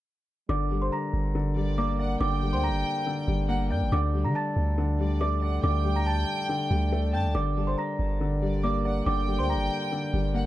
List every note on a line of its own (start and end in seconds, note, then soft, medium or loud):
0.49 0.90 G1 loud
0.49 1.33 D3 loud
0.49 3.89 G3 medium
0.49 10.46 G4 medium
0.49 3.89 A#4 medium
0.49 10.46 D5 medium
0.49 0.80 D5 medium
0.49 0.80 D6 loud
0.71 1.55 G3 medium
0.82 0.91 C5 medium
0.82 0.91 C6 medium
0.92 1.74 A#5 medium
0.92 1.74 A#6 medium
1.13 2.17 G1 loud
1.35 2.19 D3 loud
1.56 2.41 G3 medium
1.56 1.97 D5 medium
1.78 2.85 A#3 loud
1.78 2.19 D5 medium
1.78 2.18 D6 medium
1.99 3.06 D5 medium
1.99 2.20 F#5 medium
2.21 2.54 G1 loud
2.21 3.05 D3 loud
2.21 2.51 D5 medium
2.21 3.45 G5 loud
2.21 2.51 D6 loud
2.42 3.26 G3 medium
2.53 2.70 D2 loud
2.53 2.63 C5 medium
2.53 2.62 C6 medium
2.63 3.67 A#5 medium
2.63 3.67 A#6 medium
2.69 2.84 G1 loud
3.06 3.91 D3 medium
3.28 3.72 G1 loud
3.28 3.92 G3 medium
3.49 3.92 A#3 medium
3.49 3.70 F#5 medium
3.71 3.83 G2 loud
3.71 3.92 D5 medium
3.71 3.91 G5 medium
3.71 3.90 G5 medium
3.71 3.90 G6 medium
3.81 3.92 G1 loud
3.92 4.26 D2 loud
3.92 7.32 D3 medium
3.92 4.76 D3 loud
3.92 7.32 A3 medium
3.92 4.23 D5 medium
3.92 4.22 D6 loud
4.14 4.98 G3 medium
4.24 4.34 D3 loud
4.24 4.34 A#5 medium
4.24 4.34 A#6 medium
4.35 5.17 A5 loud
4.35 5.17 A6 medium
4.56 5.60 D2 loud
4.78 5.62 D3 loud
4.99 5.83 G3 medium
4.99 5.40 D5 medium
5.21 6.28 A3 medium
5.21 5.61 D5 medium
5.21 5.61 D6 medium
5.42 6.49 D5 medium
5.42 5.62 F#5 medium
5.64 6.25 D2 loud
5.64 6.48 D3 medium
5.64 5.94 D5 medium
5.64 7.10 G5 loud
5.64 5.94 D6 loud
5.84 6.69 G3 medium
5.96 6.05 A#5 medium
5.96 6.06 A#6 medium
6.06 7.10 A5 medium
6.06 7.10 A6 medium
6.49 7.33 D3 medium
6.71 7.15 D2 loud
6.71 7.35 G3 medium
6.92 7.35 A3 medium
7.13 7.26 F#2 loud
7.13 7.35 D5 medium
7.13 7.32 G5 medium
7.13 7.34 A5 medium
7.13 7.33 G6 soft
7.24 7.34 D2 loud
7.35 7.76 G1 loud
7.35 8.19 D3 loud
7.35 10.46 G3 medium
7.35 10.46 A#4 medium
7.35 7.66 D5 medium
7.35 7.65 D6 loud
7.57 8.40 G3 medium
7.67 7.77 C5 medium
7.67 7.77 C6 medium
7.78 8.60 A#5 medium
7.78 8.60 A#6 medium
7.99 9.02 G1 loud
8.21 9.05 D3 medium
8.42 9.26 G3 medium
8.42 8.82 D5 medium
8.64 9.71 A#3 medium
8.64 9.04 D5 medium
8.64 9.04 D6 medium
8.85 9.92 D5 medium
8.85 9.05 F#5 medium
9.06 9.40 G1 loud
9.06 9.90 D3 loud
9.06 9.37 D5 medium
9.06 10.31 G5 loud
9.06 9.37 D6 loud
9.28 10.12 G3 medium
9.39 9.56 D2 loud
9.39 9.48 C5 medium
9.39 9.48 C6 medium
9.49 10.46 A#5 medium
9.49 10.46 A#6 medium
9.55 9.70 G1 loud
9.92 10.46 D3 medium
10.13 10.46 G1 loud
10.13 10.46 G3 medium
10.34 10.46 A#3 medium
10.34 10.46 F#5 medium